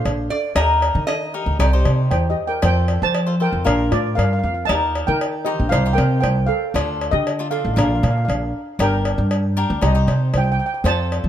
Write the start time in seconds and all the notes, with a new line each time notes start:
Already playing: D4 F4 A4 C5 F5
0.05 A#1, cowbell
0.30 D5
0.55 D#2 D#4 G4 A#4 D#5, cowbell
0.82 cowbell
0.95 D#3
1.07 D#5, cowbell
1.34 D#4 G4 A#4
1.46 D2
1.59 C2 D#4 G4 C5 D5, cowbell
1.73 D#4 G4 C5
1.85 C3, cowbell
2.11 E2 C5 G5, cowbell
2.30 G4 D#5
2.47 A#4 G5
2.62 F2 F4 A4 C5 G5, cowbell
2.88 cowbell
3.02 F3 C5 A5
3.15 cowbell
3.27 F4 A4 C5
3.40 F4 A4 A#4 C5 G5
3.52 F2
3.65 A#1 F4 A#4 D5 F5, cowbell
3.91 A2 F4 D5, cowbell
4.15 G2 A#4 F5, cowbell
4.23 F5
4.33 F5
4.39 F5
4.43 F2 F5
4.54 F5
4.65 D#2 D#4 D#5 A5, cowbell
4.70 G4 A#4
4.95 cowbell
5.07 D#3 A#4 G5
5.21 cowbell
5.45 D#4 G4 C5 D#5
5.60 A#1
5.69 C2 D#4 C5 F5, cowbell
5.73 G4 C5
5.86 D#4 G4 C5
5.93 A#4 G5
5.98 C3, cowbell
6.20 C2 C5 G5, cowbell
6.46 A4 F5
6.74 D2 D4 F4 A4, cowbell
7.01 cowbell
7.11 D3 G4 D#5
7.27 cowbell
7.39 D4 F4 A4
7.51 D4 F4 A4 F5
7.59 F5
7.65 A1 F5
7.74 A#1 D4 F4 A#4 F5
7.78 F5, cowbell
7.88 F5
7.95 F5
8.03 A#2 F5, cowbell
8.10 F5
8.18 F5
8.25 A#1 F5
8.30 cowbell
8.34 F5
8.79 G1 D4 G4 A#4 G5, cowbell
9.05 cowbell
9.18 G2
9.31 cowbell
9.57 D4 G4 A#4
9.70 D2
9.81 C2 D#4 G4 C5 D#5, cowbell
9.95 D#4 G4 C5
10.07 C3, cowbell
10.34 C2 C5, cowbell
10.38 G5
10.44 G5
10.52 G5
10.59 G5
10.66 G5
10.74 G5
10.84 F2 F4 A4 C5 A5, cowbell
11.12 cowbell
11.24 F3